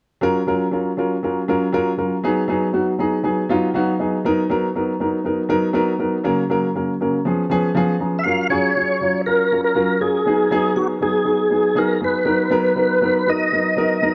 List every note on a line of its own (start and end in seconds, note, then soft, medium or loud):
0.21 0.40 F#3 loud
0.21 0.40 C#4 medium
0.21 0.40 F4 medium
0.21 0.40 A#4 loud
0.47 0.65 F#3 medium
0.47 0.65 C#4 medium
0.47 0.65 F4 medium
0.47 0.66 A#4 loud
0.71 0.90 F#3 medium
0.71 0.90 C#4 medium
0.71 0.90 F4 medium
0.71 0.91 A#4 medium
0.97 1.15 F#3 medium
0.97 1.15 C#4 medium
0.97 1.16 F4 medium
0.97 1.16 A#4 medium
1.23 1.40 F#3 medium
1.23 1.41 C#4 medium
1.23 1.41 F4 medium
1.23 1.41 A#4 medium
1.48 1.66 F#3 loud
1.48 1.66 C#4 medium
1.48 1.66 F4 medium
1.48 1.66 A#4 loud
1.72 1.90 F#3 loud
1.72 1.91 C#4 medium
1.72 1.91 F4 medium
1.72 1.91 A#4 loud
1.97 2.15 F#3 medium
1.97 2.16 C#4 medium
1.97 2.16 F4 medium
1.97 2.16 A#4 medium
2.24 2.41 F#3 loud
2.24 2.41 B3 medium
2.24 2.41 D#4 medium
2.24 2.41 G#4 loud
2.48 2.66 F#3 loud
2.48 2.66 B3 medium
2.48 2.66 D#4 medium
2.48 2.66 G#4 loud
2.73 2.91 F#3 medium
2.73 2.91 B3 medium
2.73 2.91 D#4 medium
2.73 2.91 F#4 medium
2.99 3.16 F#3 medium
2.99 3.16 B3 medium
2.99 3.17 D#4 medium
2.99 3.17 G#4 loud
2.99 3.22 A#5 medium
3.23 3.41 F#3 medium
3.23 3.41 B3 medium
3.23 3.41 D#4 medium
3.23 3.42 G#4 medium
3.23 3.59 G#5 medium
3.49 3.66 F#3 loud
3.49 3.67 B3 medium
3.49 3.67 D#4 loud
3.49 3.67 F4 loud
3.63 3.74 F#5 medium
3.74 3.91 F#3 loud
3.74 3.92 B3 medium
3.74 3.92 D#4 medium
3.74 3.92 F#4 loud
3.74 3.98 F5 medium
3.99 4.16 F#3 medium
3.99 4.17 B3 medium
3.99 4.17 D#4 medium
3.99 4.17 G#4 medium
3.99 4.23 D#5 medium
4.25 4.42 F#3 medium
4.25 4.42 B3 medium
4.25 4.42 D#4 loud
4.25 4.42 A#4 loud
4.50 4.67 F#3 medium
4.50 4.67 B3 medium
4.50 4.67 D#4 medium
4.50 4.68 A#4 loud
4.75 4.92 F#3 medium
4.75 4.92 B3 medium
4.75 4.93 D#4 medium
4.75 4.93 A#4 medium
5.00 5.17 F#3 medium
5.00 5.17 B3 medium
5.00 5.18 D#4 medium
5.00 5.18 A#4 medium
5.24 5.42 F#3 medium
5.24 5.42 B3 medium
5.24 5.42 D#4 medium
5.24 5.43 A#4 medium
5.49 5.67 F#3 loud
5.49 5.67 B3 medium
5.49 5.67 D#4 medium
5.49 5.67 A#4 loud
5.73 5.91 F#3 loud
5.73 5.91 B3 loud
5.73 5.92 D#4 medium
5.73 5.92 A#4 loud
5.98 6.16 F#3 medium
5.98 6.17 B3 medium
5.98 6.17 D#4 medium
5.98 6.17 A#4 medium
6.23 6.41 C#3 loud
6.23 6.42 F#3 medium
6.23 6.42 A#3 medium
6.23 6.42 C#4 medium
6.23 6.42 A#4 loud
6.49 6.67 C#3 medium
6.49 6.67 F#3 medium
6.49 6.68 A#3 medium
6.49 6.67 C#4 medium
6.49 6.68 A#4 loud
6.74 6.92 C#3 medium
6.74 6.92 F#3 medium
6.74 6.92 A#3 medium
6.74 6.93 C#4 medium
6.74 6.93 A#4 medium
7.00 7.18 C#3 medium
7.00 7.18 F#3 medium
7.00 7.18 A#3 medium
7.00 7.18 C#4 medium
7.00 7.18 A#4 medium
7.25 7.42 F3 medium
7.25 7.43 B3 medium
7.25 7.43 C#4 medium
7.25 7.43 G#4 medium
7.50 7.67 F3 medium
7.50 7.68 B3 medium
7.50 7.68 C#4 medium
7.50 7.68 G#4 loud
7.75 7.92 F3 loud
7.75 7.93 B3 medium
7.75 7.93 C#4 medium
7.75 7.93 G#4 loud
7.75 7.99 F5 medium
8.00 8.17 F3 medium
8.00 8.18 B3 medium
8.00 8.18 C#4 medium
8.00 8.18 G#4 medium
8.00 8.23 A#5 medium
8.19 8.25 E5 medium
8.23 8.43 F#3 medium
8.23 8.43 C#4 medium
8.23 8.43 F4 medium
8.23 8.44 A#4 medium
8.23 8.48 F5 medium
8.50 8.67 F#3 loud
8.50 8.68 C#4 medium
8.50 8.68 F4 medium
8.50 8.68 G#4 loud
8.50 9.21 C#5 loud
8.76 8.93 F#3 medium
8.76 8.93 C#4 medium
8.76 8.93 F4 medium
8.76 8.94 G#4 medium
9.01 9.18 F#3 medium
9.01 9.19 C#4 medium
9.01 9.19 F4 medium
9.01 9.19 C#5 medium
9.26 9.44 F#3 medium
9.26 9.44 C#4 medium
9.26 9.44 F4 medium
9.26 9.61 A#4 medium
9.26 9.44 A#4 medium
9.51 9.69 F#3 medium
9.51 9.69 C#4 medium
9.51 9.69 F4 medium
9.51 9.69 A#4 medium
9.64 10.02 A#4 medium
9.75 9.93 F#3 medium
9.75 9.93 C#4 medium
9.75 9.93 F4 medium
9.75 9.94 A#4 medium
10.00 10.18 F#3 medium
10.00 10.18 C#4 medium
10.00 10.19 F4 medium
10.00 10.78 G#4 medium
10.00 10.19 A#4 medium
10.26 10.43 F#3 medium
10.26 10.44 B3 medium
10.26 10.44 D#4 medium
10.26 10.44 G#4 medium
10.51 10.68 F#3 loud
10.51 10.69 B3 medium
10.51 10.69 D#4 loud
10.51 10.69 G#4 loud
10.76 10.93 F#3 medium
10.76 10.94 B3 medium
10.76 10.94 D#4 medium
10.76 10.87 F#4 medium
10.76 10.94 G#4 medium
11.01 11.18 F#3 medium
11.01 11.19 B3 medium
11.01 11.19 D#4 medium
11.01 11.19 G#4 medium
11.01 11.79 G#4 medium
11.24 11.43 F#3 medium
11.24 11.43 B3 medium
11.24 11.43 D#4 medium
11.24 11.43 G#4 medium
11.50 11.68 F#3 medium
11.50 11.68 B3 medium
11.50 11.69 D#4 medium
11.50 11.69 G#4 medium
11.75 11.93 F#3 medium
11.75 11.93 B3 medium
11.75 11.94 D#4 medium
11.75 11.94 G#4 loud
11.75 12.01 A#4 medium
12.00 12.18 F#3 medium
12.00 12.19 B3 medium
12.00 12.19 D#4 medium
12.00 12.19 G#4 medium
12.04 13.32 B4 medium
12.25 12.43 F#3 medium
12.25 12.43 B3 medium
12.25 12.43 D#4 medium
12.25 12.44 A#4 medium
12.50 12.68 F#3 loud
12.50 12.69 B3 medium
12.50 12.69 D#4 medium
12.50 12.69 A#4 loud
12.75 12.93 F#3 medium
12.75 12.94 B3 medium
12.75 12.94 D#4 medium
12.75 12.94 A#4 medium
13.01 13.19 F#3 medium
13.01 13.19 B3 medium
13.01 13.19 D#4 medium
13.01 13.20 A#4 medium
13.26 13.44 F#3 medium
13.26 13.44 B3 medium
13.26 13.44 D#4 medium
13.26 13.45 A#4 medium
13.26 14.14 D#5 medium
13.52 13.69 F#3 medium
13.52 13.70 B3 medium
13.52 13.70 D#4 medium
13.52 13.70 A#4 medium
13.76 13.94 F#3 medium
13.76 13.94 B3 medium
13.76 13.95 D#4 medium
13.76 13.95 A#4 loud
14.02 14.14 F#3 medium
14.02 14.14 B3 medium
14.02 14.14 D#4 medium
14.02 14.14 A#4 medium